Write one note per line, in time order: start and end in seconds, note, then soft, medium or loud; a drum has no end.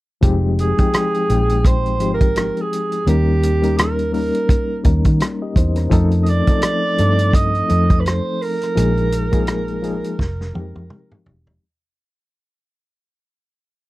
0.21 0.72 F1 medium
0.21 0.67 F3 medium
0.21 0.68 G#3 medium
0.21 0.68 C4 medium
0.21 0.68 D#4 medium
0.21 0.68 G4 loud
0.21 kick medium
0.21 closed hi-hat medium
0.59 1.68 G#4 medium
0.59 closed hi-hat medium
0.77 1.20 F3 medium
0.77 1.21 G#3 medium
0.77 1.21 C4 soft
0.77 1.22 D#4 medium
0.77 1.22 G5 medium
0.77 kick medium
0.77 closed hi-hat soft
0.93 cross-stick loud
0.93 closed hi-hat medium
1.14 closed hi-hat soft
1.29 2.00 A#1 medium
1.29 1.89 F3 medium
1.29 1.90 G#3 medium
1.29 1.90 C4 medium
1.29 1.90 D#4 medium
1.29 1.90 G5 medium
1.29 closed hi-hat medium
1.49 closed hi-hat soft
1.65 2.13 C5 medium
1.65 kick medium
1.65 closed hi-hat medium
1.86 closed hi-hat soft
1.99 2.49 G#1 medium
1.99 2.90 F3 medium
1.99 2.90 G#3 soft
1.99 2.90 C4 medium
1.99 2.91 D#4 medium
1.99 2.91 G4 medium
1.99 closed hi-hat medium
2.14 2.63 A#4 medium
2.21 kick medium
2.21 closed hi-hat soft
2.36 cross-stick medium
2.36 closed hi-hat medium
2.57 closed hi-hat soft
2.61 3.09 G#4 medium
2.73 closed hi-hat medium
2.92 closed hi-hat soft
3.06 4.30 D#2 medium
3.06 3.52 G3 medium
3.06 3.52 A#3 medium
3.06 3.52 C#4 medium
3.06 3.53 D#4 medium
3.06 3.79 G4 medium
3.06 3.53 A#4 medium
3.06 closed hi-hat medium
3.43 closed hi-hat medium
3.62 4.05 G3 medium
3.62 4.05 A#3 medium
3.62 4.06 C#4 medium
3.62 4.06 D#4 medium
3.62 4.06 A#4 medium
3.62 closed hi-hat soft
3.77 4.13 A#4 medium
3.77 cross-stick loud
3.77 closed hi-hat medium
3.99 closed hi-hat soft
4.13 4.74 G3 medium
4.13 4.74 A#3 medium
4.13 4.74 C#4 medium
4.13 4.74 D#4 medium
4.13 4.81 A#4 medium
4.13 4.75 A#4 medium
4.13 open hi-hat soft
4.35 closed hi-hat medium
4.49 kick medium
4.49 closed hi-hat medium
4.84 5.03 D#2 medium
4.84 5.74 G3 medium
4.84 5.74 A#3 medium
4.84 5.21 C#4 medium
4.84 5.21 D#4 medium
4.84 5.21 A#4 medium
4.84 kick medium
4.84 closed hi-hat medium
5.05 5.19 D#3 medium
5.05 kick medium
5.05 closed hi-hat soft
5.20 cross-stick medium
5.20 closed hi-hat medium
5.42 5.56 G4 soft
5.42 5.56 D#5 medium
5.56 5.87 E2 medium
5.56 5.77 D#4 medium
5.56 5.76 C5 medium
5.56 kick medium
5.56 closed hi-hat medium
5.76 6.11 C#4 soft
5.76 6.10 A#4 medium
5.76 cross-stick soft
5.76 closed hi-hat soft
5.90 6.40 F2 loud
5.90 6.36 F3 loud
5.90 6.36 A3 medium
5.90 6.37 C4 medium
5.90 6.37 D#4 medium
5.90 6.37 A4 loud
5.90 kick medium
5.90 closed hi-hat medium
6.11 closed hi-hat soft
6.23 6.31 D#5 medium
6.23 closed hi-hat medium
6.29 7.36 D5 loud
6.47 6.90 F3 medium
6.47 6.91 A3 medium
6.47 6.91 C4 medium
6.47 6.91 D#4 medium
6.47 6.92 A4 medium
6.47 kick medium
6.47 closed hi-hat soft
6.62 cross-stick loud
6.62 closed hi-hat loud
6.98 7.61 G2 medium
6.98 7.58 F3 medium
6.98 7.59 A3 medium
6.98 7.59 C4 medium
6.98 7.59 D#4 medium
6.98 7.60 A4 medium
6.98 closed hi-hat medium
7.19 closed hi-hat medium
7.33 8.02 D#5 loud
7.33 kick medium
7.33 closed hi-hat medium
7.55 closed hi-hat soft
7.68 8.19 F2 medium
7.68 8.59 F3 medium
7.68 8.59 A3 medium
7.68 8.59 C4 medium
7.68 8.59 D#4 soft
7.68 8.60 A4 medium
7.68 closed hi-hat medium
7.90 kick medium
7.90 closed hi-hat soft
8.00 8.08 B4 medium
8.06 8.44 C5 medium
8.06 cross-stick medium
8.06 closed hi-hat medium
8.42 11.27 A#4 medium
8.42 open hi-hat soft
8.61 cross-stick soft
8.61 closed hi-hat soft
8.75 10.01 A#1 medium
8.75 9.21 F3 medium
8.75 9.21 G#3 medium
8.75 9.21 A#3 medium
8.75 9.22 D#4 medium
8.75 9.22 G#4 medium
8.75 closed hi-hat medium
8.97 closed hi-hat soft
9.12 closed hi-hat medium
9.32 9.75 F3 medium
9.32 9.75 G#3 medium
9.32 9.75 A#3 medium
9.32 9.76 D#4 medium
9.32 9.76 G#4 medium
9.32 kick medium
9.32 closed hi-hat soft
9.47 cross-stick loud
9.47 closed hi-hat medium
9.68 closed hi-hat soft
9.82 10.19 F3 medium
9.82 10.19 G#3 medium
9.82 10.19 A#3 medium
9.82 10.20 D#4 medium
9.82 10.20 G#4 medium
9.82 closed hi-hat medium
10.04 closed hi-hat medium
10.19 10.51 F1 medium
10.19 kick medium
10.19 snare medium
10.41 snare soft
10.54 10.74 F2 medium
10.54 11.44 F3 medium
10.54 11.45 G#3 medium
10.54 11.45 C4 medium
10.54 11.45 D#4 medium
10.54 11.46 G4 medium
10.54 high tom medium
10.76 10.89 F2 medium
10.76 high tom medium
10.90 mid tom medium
11.12 mid tom medium
11.26 11.58 E1 medium
11.26 floor tom medium
11.47 floor tom medium